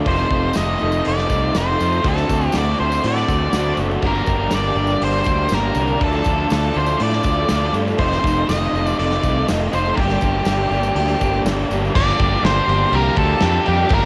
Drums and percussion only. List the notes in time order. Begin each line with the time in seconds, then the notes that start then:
0.06 kick, open hi-hat
0.16 tambourine
0.31 kick
0.53 snare, open hi-hat, tambourine
0.67 tambourine
0.79 tambourine
0.92 tambourine
1.05 open hi-hat
1.18 snare, tambourine
1.30 kick, tambourine
1.54 snare, open hi-hat, tambourine
1.80 tambourine
1.92 tambourine
2.04 kick, open hi-hat, tambourine
2.17 snare, tambourine
2.29 kick, tambourine
2.52 snare, open hi-hat, tambourine
2.92 tambourine
3.04 open hi-hat
3.16 snare, tambourine
3.28 kick, tambourine
3.53 snare, open hi-hat, tambourine
3.77 tambourine
3.91 tambourine
4.02 kick, crash
4.16 tambourine
4.26 kick, tambourine
4.50 snare, open hi-hat, tambourine
4.65 tambourine
4.76 tambourine
4.87 tambourine
5.02 open hi-hat
5.13 tambourine
5.24 kick, tambourine
5.49 snare, open hi-hat, tambourine
5.75 tambourine
5.87 tambourine
6.01 kick, open hi-hat
6.13 tambourine
6.24 kick, tambourine
6.50 snare, open hi-hat, tambourine
6.63 tambourine
6.74 tambourine
6.87 tambourine
7.00 open hi-hat
7.11 snare, tambourine
7.23 kick, tambourine
7.48 snare, open hi-hat, tambourine
7.74 tambourine
7.87 tambourine
7.98 kick, open hi-hat
8.12 snare, tambourine
8.24 kick, tambourine
8.49 snare, open hi-hat, tambourine
8.64 tambourine
8.75 tambourine
8.87 tambourine
8.99 open hi-hat
9.11 snare, tambourine
9.23 kick, tambourine
9.48 snare, open hi-hat, tambourine
9.73 tambourine
9.86 tambourine
9.97 kick, open hi-hat
10.09 snare, tambourine
10.21 kick, tambourine
10.45 snare, open hi-hat, tambourine
10.71 tambourine
10.83 tambourine
10.96 open hi-hat
11.08 tambourine
11.21 kick, tambourine
11.33 tambourine
11.46 snare, open hi-hat, tambourine
11.59 tambourine
11.71 tambourine
11.85 tambourine
11.95 kick, crash
12.09 snare
12.20 kick, crash
12.45 snare, crash
12.69 crash
12.93 crash
13.16 kick, crash
13.40 snare, crash
13.66 crash
13.89 kick, crash